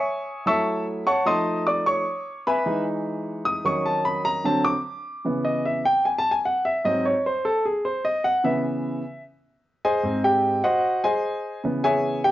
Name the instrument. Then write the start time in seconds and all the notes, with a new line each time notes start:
grand piano
Already playing: C#5 E5 G#5 C#6
0.46 F#3 A3 E4 E5 A5 C#6 E6
1.06 C#5 F#5 A5 C#6
1.25 F3 A3 D#4 D#5 A5 C6 D#6
1.67 D5 D6
1.86 C#5 C#6
2.47 B4 E5 G#5 B5
2.66 E3 G#3 D#4
3.45 D#6
3.65 D#3 F#3 C#4 C#6
3.86 A5
4.05 B5
4.25 A#5
4.44 D3 F#3 C4 A5
4.65 D6
5.25 C#3 E3 B3
5.45 D#5
5.66 E5
5.86 G5
6.05 G#5
6.18 A5
6.31 G#5
6.45 F#5
6.65 E5
6.84 G#2 F#3 C4 D#5
7.05 C#5
7.26 C5
7.45 A4
7.65 G#4
7.85 C5
8.05 D#5
8.24 F#5
8.44 C#3 E3 B3 E5
9.85 G#4 C5 D#5 G#5
10.03 G#2 G#3 C4
10.24 G4 G5
10.64 F#4 C5 D#5 F#5
11.04 G#4 C5 D#5 G#5
11.64 C#3 E3 B3
11.84 G#4 C#5 E5 G#5
12.24 G4 G5